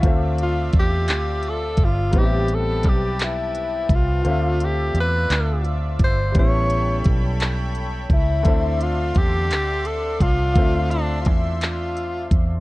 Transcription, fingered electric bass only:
X:1
M:6/8
L:1/8
Q:3/8=57
K:Ddor
V:1 name="Fingered electric bass" clef=bass
D,,2 E,, D,,2 G,,, | A,,,2 B,,,3 C,, | D,,2 E,, D,,2 G,,, | A,,,2 B,,,3 ^C,, |
D,,2 E,, D,,2 C,, | D,,2 E,,3 E,, |]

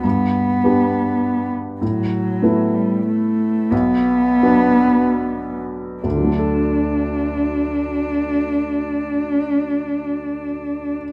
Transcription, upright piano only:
X:1
M:3/4
L:1/8
Q:1/4=78
K:D
V:1 name="Upright piano"
G,,2 [B,DG]4 | A,,2 [A,B,E]4 | B,,,2 [F,B,D]4 | [D,,D,F,A,DA]6- |
[D,,D,F,A,DA]6 |]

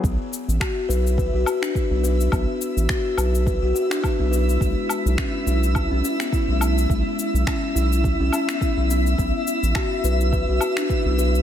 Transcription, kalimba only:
X:1
M:4/4
L:1/16
Q:"Swing 16ths" 1/4=105
K:C#phr
V:1 name="Kalimba"
B, z3 F z B z B F F D B B, B z | B, z3 F z B z B F F D B B, B z | G, z3 C z E z E C C B, E G, E z | G, z3 C z E z E C C B, C E B, z |
B, z3 F z B z B F F D B B, B z |]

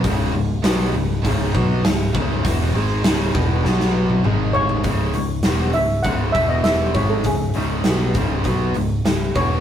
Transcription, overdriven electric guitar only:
X:1
M:4/4
L:1/8
Q:1/4=100
K:C#m
V:1 name="Overdriven electric guitar" clef=bass
[C,,G,,C,] [C,,G,,] [B,,F,B,] [C,,G,,] [C,,G,,C,] [B,,F,B,] [C,,G,,] [C,,G,,C,] | [E,,B,,E,] [G,,D,G,] [C,,G,,C,] [E,,B,,E,] [B,,F,B,]2 [G,,D,G,]2 | [C,,G,,C,] [C,,G,,] [E,,B,,E,] [C,,G,,] [C,,G,,C,] [E,,B,,E,]2 [G,,D,G,] | [C,,G,,] [C,,G,,C,] [B,,F,B,] [C,,G,,C,] [B,,F,B,] [C,,G,,] [C,,G,,] [E,,B,,E,] |]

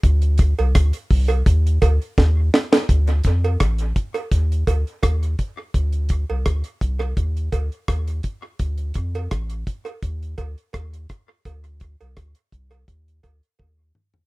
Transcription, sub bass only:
X:1
M:4/4
L:1/16
Q:1/4=84
K:Cdor
V:1 name="Sub bass" clef=bass
D,,3 C,, D,, z C,,2 E,,2 D,, z E,,2 z2 | D,,2 F,,2 A,,,2 z2 E,,2 D,, z E,,2 z2 | D,,3 C,, D,, z C,,2 E,,2 D,, z E,,2 z2 | D,,2 F,,2 A,,,2 z2 E,,2 D,, z E,,2 z2 |
D,,3 C,, D,, z C,,2 E,,2 D,, z E,,2 z2 |]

